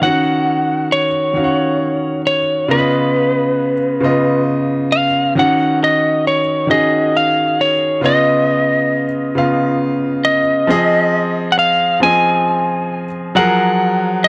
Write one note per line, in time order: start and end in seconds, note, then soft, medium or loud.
0.01 1.05 D#3 medium
0.01 1.06 C#4 medium
0.01 1.06 F#4 medium
0.01 0.87 F#5 medium
0.01 1.07 F#5 medium
0.92 2.21 C#5 medium
1.33 2.38 D#3 soft
1.33 2.38 C#4 medium
1.33 2.39 F#4 soft
1.33 1.43 F5 soft
1.44 2.43 F#5 medium
2.27 2.71 C#5 medium
2.68 3.72 C#3 medium
2.68 3.72 B3 medium
2.68 3.73 F4 medium
2.68 4.44 B4 medium
2.68 2.77 D5 medium
2.78 3.77 D#5 medium
4.00 5.04 C#3 medium
4.00 5.05 B3 medium
4.00 5.06 F4 medium
4.00 5.06 D#5 medium
4.92 5.33 F5 medium
5.35 6.38 D#3 medium
5.35 6.39 C#4 medium
5.35 6.39 F#4 medium
5.35 6.40 F#5 medium
5.39 5.79 F#5 medium
5.84 6.27 D#5 medium
6.27 6.70 C#5 medium
6.67 7.71 D#3 medium
6.67 7.71 C#4 soft
6.67 7.72 F#4 medium
6.67 7.73 G#4 medium
6.67 7.15 D#5 medium
7.17 7.60 F5 medium
7.61 8.01 C#5 medium
8.01 9.05 C#3 medium
8.01 9.05 B3 medium
8.01 9.06 F4 medium
8.01 9.06 D#5 medium
8.06 9.77 D#5 medium
9.35 10.38 C#3 medium
9.35 10.39 B3 medium
9.35 10.39 F4 medium
9.35 10.40 F5 medium
10.25 11.47 D#5 medium
10.67 11.71 F3 medium
10.67 11.72 C4 medium
10.67 11.72 G#4 medium
10.67 11.73 D#5 medium
11.52 11.58 F#5 medium
11.59 11.99 F5 loud
12.00 13.04 F3 medium
12.00 13.05 C4 medium
12.00 13.05 G#4 medium
12.00 13.06 D#5 medium
12.00 13.36 G#5 loud
13.35 14.28 F3 medium
13.35 14.28 F#3 medium
13.35 14.28 G#4 medium
13.35 14.28 A#4 medium
13.35 14.27 F#5 medium
14.24 14.28 D#5 medium